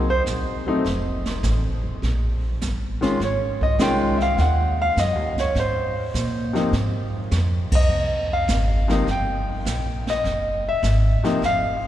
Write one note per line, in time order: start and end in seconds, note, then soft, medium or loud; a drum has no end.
0.00 0.25 C2 medium
0.10 0.21 C5 medium
0.26 0.83 A#1 medium
0.26 kick soft
0.26 snare medium
0.26 hi-hat pedal medium
0.66 0.83 F#3 medium
0.66 0.84 A3 medium
0.66 0.84 C4 medium
0.66 0.84 D#4 medium
0.84 1.42 F1 medium
0.84 brush sweep soft
0.84 kick soft
0.84 snare soft
1.26 snare soft
1.43 1.65 A1 medium
1.43 kick soft
1.43 snare medium
1.43 hi-hat pedal medium
1.64 1.83 F1 medium
1.83 2.02 D#1 medium
2.02 2.60 A#1 medium
2.02 brush sweep soft
2.02 kick soft
2.02 snare soft
2.61 3.19 G1 medium
2.61 kick soft
2.61 snare medium
2.61 hi-hat pedal medium
3.01 3.18 D#3 medium
3.01 3.18 G#3 medium
3.01 3.19 C#4 medium
3.01 3.19 F4 medium
3.01 snare soft
3.20 3.77 G#1 medium
3.20 3.62 C#5 medium
3.20 brush sweep soft
3.20 kick soft
3.20 snare soft
3.61 3.80 D#5 medium
3.61 kick medium
3.79 4.36 C2 medium
3.79 4.16 D#3 medium
3.79 4.16 G#3 medium
3.79 4.16 C#4 medium
3.79 4.16 F4 medium
3.79 4.20 G5 loud
3.79 kick soft
3.79 snare medium
3.79 hi-hat pedal soft
4.17 4.20 E5 medium
4.17 snare soft
4.22 4.35 F5 medium
4.37 4.95 D#2 medium
4.37 4.41 F5 medium
4.37 4.79 F#5 medium
4.37 brush sweep soft
4.37 kick soft
4.37 snare soft
4.82 4.98 F5 medium
4.96 5.15 F#2 medium
4.96 5.37 D#5 medium
4.96 kick soft
4.96 snare medium
4.96 hi-hat pedal medium
5.15 5.34 D#2 medium
5.35 5.53 C#2 medium
5.35 snare soft
5.40 5.56 C#5 medium
5.55 6.12 G#2 medium
5.55 brush sweep medium
5.55 kick soft
5.55 snare soft
5.60 6.53 C5 medium
6.14 6.71 A#2 medium
6.14 kick soft
6.14 snare medium
6.14 hi-hat pedal medium
6.53 6.70 C3 medium
6.53 6.71 F3 medium
6.53 6.71 A#3 medium
6.53 6.72 D#4 medium
6.53 snare soft
6.73 7.29 G#2 medium
6.73 brush sweep soft
6.73 kick soft
6.73 snare soft
7.31 7.69 F2 medium
7.31 kick soft
7.31 snare medium
7.31 hi-hat pedal soft
7.71 8.28 D#5 medium
7.71 muted upright bass stroke soft
7.71 kick medium
7.71 ride medium
7.89 8.46 C2 medium
7.89 brush sweep soft
8.33 9.05 F5 medium
8.48 9.05 G#1 medium
8.48 kick soft
8.48 snare medium
8.48 hi-hat pedal medium
8.88 9.05 C3 medium
8.88 9.05 F3 medium
8.88 9.06 A#3 medium
8.88 9.06 D#4 medium
8.88 snare soft
9.07 9.64 G1 medium
9.07 brush sweep soft
9.07 kick soft
9.07 snare soft
9.11 10.04 G5 medium
9.65 10.23 A#1 medium
9.65 kick soft
9.65 snare medium
9.65 hi-hat pedal medium
10.07 10.63 D#5 medium
10.07 snare soft
10.24 10.81 F#1 medium
10.24 brush sweep soft
10.24 kick soft
10.24 snare soft
10.69 11.40 E5 medium
10.83 11.21 G#1 loud
10.83 kick soft
10.83 snare medium
10.83 hi-hat pedal medium
11.23 11.40 C3 medium
11.23 11.40 F3 medium
11.23 11.40 A#3 medium
11.23 11.41 D#4 medium
11.23 muted upright bass stroke soft
11.23 snare soft
11.42 11.87 F1 medium
11.42 11.87 F5 loud
11.42 brush sweep soft
11.42 kick soft
11.42 snare soft